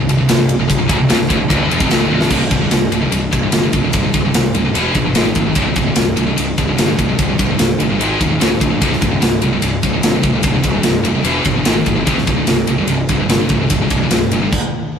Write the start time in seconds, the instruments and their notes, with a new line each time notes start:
0.01 distorted electric guitar C2
0.09 picked electric bass C1, distorted electric guitar C2, ride
0.18 picked electric bass C1, distorted electric guitar C2
0.28 picked electric bass C1, distorted electric guitar C2, snare, ride
0.38 picked electric bass C1, distorted electric guitar C2, snare
0.49 ride
0.58 picked electric bass C1, distorted electric guitar C2
0.68 picked electric bass C1, distorted electric guitar C2, kick, ride
0.78 picked electric bass C1, distorted electric guitar C2
0.88 picked electric bass G#1, distorted electric guitar G#2, kick, ride
0.98 picked electric bass C1, distorted electric guitar C2
1.09 picked electric bass C1, distorted electric guitar C2, snare, ride
1.19 picked electric bass C1, distorted electric guitar C2, snare
1.29 picked electric bass C#1, distorted electric guitar C#2, kick, ride
1.39 picked electric bass C1, distorted electric guitar C2
1.50 picked electric bass C#1, distorted electric guitar C#2, kick, ride
1.69 picked electric bass E1, distorted electric guitar E2, ride
1.80 picked electric bass F1, distorted electric guitar F2, kick
1.90 picked electric bass C#1, distorted electric guitar C#2, snare, ride
2.10 picked electric bass C1, distorted electric guitar C2, high tom
2.21 snare
2.30 picked electric bass C1, distorted electric guitar C2 G2 C3, kick, crash
2.41 distorted electric guitar C2 G2
2.51 picked electric bass C1, distorted electric guitar C2 G2, kick, ride
2.61 distorted electric guitar C2 G2
2.71 picked electric bass C1, distorted electric guitar C2 G2, snare, ride
2.92 picked electric bass C1, distorted electric guitar C2 G2, ride
3.02 distorted electric guitar C2 G2
3.11 picked electric bass C1, distorted electric guitar C2 G2, ride
3.32 picked electric bass C1, distorted electric guitar C2 G2, kick, ride
3.43 distorted electric guitar C2 G2
3.52 picked electric bass G1, distorted electric guitar C2 G2, snare, ride
3.63 distorted electric guitar C2 G2
3.73 picked electric bass C1, distorted electric guitar C2 G2, kick, ride
3.84 distorted electric guitar C2 G2
3.93 picked electric bass C1, distorted electric guitar C2 G2, kick, ride
4.04 distorted electric guitar C2 G2
4.14 picked electric bass C1, distorted electric guitar C2 G2, kick, ride
4.25 distorted electric guitar C2 G2
4.34 picked electric bass C1, distorted electric guitar C2 G2, snare, ride
4.55 picked electric bass C#1, distorted electric guitar C2 G2, ride
4.65 distorted electric guitar C2 G2
4.75 picked electric bass E1, distorted electric guitar E2 B2 E3, ride
4.95 picked electric bass G1, distorted electric guitar E2 B2, kick, ride
5.05 distorted electric guitar E2 B2
5.15 picked electric bass G#1, distorted electric guitar G#2 D#3 G#3, snare, ride
5.26 distorted electric guitar G#2 D#3
5.35 picked electric bass G#1, distorted electric guitar G#2 D#3, kick, ride
5.45 distorted electric guitar G#2 D#3
5.55 picked electric bass C1, distorted electric guitar C2 G2 C3, kick, ride
5.67 distorted electric guitar C2 G2
5.76 picked electric bass C1, distorted electric guitar C2 G2, kick, ride
5.87 distorted electric guitar C2 G2
5.96 picked electric bass C1, distorted electric guitar C2 G2, snare, ride
6.16 picked electric bass C1, distorted electric guitar C2 G2, ride
6.26 distorted electric guitar C2 G2
6.36 picked electric bass C1, distorted electric guitar C2 G2, ride
6.58 picked electric bass C1, distorted electric guitar C2 G2, kick, ride
6.68 distorted electric guitar C2 G2
6.77 picked electric bass G1, distorted electric guitar C2 G2, snare, ride
6.88 distorted electric guitar C2 G2
6.99 picked electric bass C1, distorted electric guitar C2 G2, kick, ride
7.09 distorted electric guitar C2 G2
7.19 picked electric bass C1, distorted electric guitar C2 G2, kick, ride
7.30 distorted electric guitar C2 G2
7.39 picked electric bass C1, distorted electric guitar C2 G2, kick, ride
7.51 distorted electric guitar C2 G2
7.59 picked electric bass C1, distorted electric guitar C2 G2, snare, ride
7.80 picked electric bass G1, distorted electric guitar C2 G2, ride
7.90 distorted electric guitar C2 G2
8.00 picked electric bass G#1, distorted electric guitar G#2 D#3 G#3, ride
8.20 picked electric bass D#1, distorted electric guitar G#2 D#3, kick, ride
8.31 distorted electric guitar G#2 D#3
8.40 picked electric bass C#1, distorted electric guitar C#2 G#2 C#3, snare, ride
8.50 distorted electric guitar C#2 G#2
8.60 picked electric bass A#1, distorted electric guitar C#2 G#2, kick, ride
8.70 distorted electric guitar C#2 G#2
8.81 picked electric bass C1, distorted electric guitar C2 G2 C3, kick, ride
8.91 distorted electric guitar C2 G2, snare
9.01 picked electric bass C1, distorted electric guitar C2 G2, kick, ride
9.11 distorted electric guitar C2 G2
9.21 picked electric bass C1, distorted electric guitar C2 G2, snare, ride
9.41 picked electric bass C1, distorted electric guitar C2 G2, ride
9.53 distorted electric guitar C2 G2
9.62 picked electric bass C1, distorted electric guitar C2 G2, ride
9.83 picked electric bass C1, distorted electric guitar C2 G2, kick, ride
9.93 distorted electric guitar C2 G2
10.02 picked electric bass G1, distorted electric guitar C2 G2, snare, ride
10.14 distorted electric guitar C2 G2
10.23 picked electric bass C1, distorted electric guitar C2 G2, kick, ride
10.33 distorted electric guitar C2 G2
10.43 picked electric bass C1, distorted electric guitar C2 G2, kick, ride
10.53 distorted electric guitar C2 G2
10.63 picked electric bass C1, distorted electric guitar C2 G2, kick, ride
10.73 distorted electric guitar C2 G2
10.83 picked electric bass C1, distorted electric guitar C2 G2, snare, ride
11.03 picked electric bass F1, distorted electric guitar C2 G2, ride
11.15 distorted electric guitar C2 G2
11.23 picked electric bass E1, distorted electric guitar E2 B2 E3, ride
11.44 picked electric bass G1, distorted electric guitar E2 B2, kick, ride
11.55 distorted electric guitar E2 B2
11.64 picked electric bass G#1, distorted electric guitar G#2 D#3 G#3, snare, ride
11.74 distorted electric guitar G#2 D#3
11.85 picked electric bass G#1, distorted electric guitar G#2 D#3, kick, ride
11.95 distorted electric guitar G#2 D#3
12.05 picked electric bass C1, distorted electric guitar C2 G2 C3, kick, ride
12.17 distorted electric guitar C2 G2, snare
12.27 picked electric bass C1, distorted electric guitar C2 G2, kick, ride
12.36 distorted electric guitar C2 G2
12.47 picked electric bass C1, distorted electric guitar C2 G2, snare, ride
12.67 picked electric bass C1, distorted electric guitar C2 G2, ride
12.78 distorted electric guitar C2 G2
12.87 picked electric bass C1, distorted electric guitar C2 G2, ride
13.09 picked electric bass C1, distorted electric guitar C2 G2, kick, ride
13.20 distorted electric guitar C2 G2
13.28 picked electric bass G1, distorted electric guitar C2 G2, snare, ride
13.41 distorted electric guitar C2 G2
13.49 picked electric bass C1, distorted electric guitar C2 G2, kick, ride
13.62 distorted electric guitar C2 G2
13.70 picked electric bass C1, distorted electric guitar C2 G2, kick, ride
13.81 distorted electric guitar C2 G2
13.90 picked electric bass C1, distorted electric guitar C2 G2, kick, ride
14.03 distorted electric guitar C2 G2
14.11 picked electric bass C1, distorted electric guitar C2 G2, snare, ride
14.31 picked electric bass G1, distorted electric guitar C2 G2, ride
14.42 distorted electric guitar C2 G2
14.53 kick, crash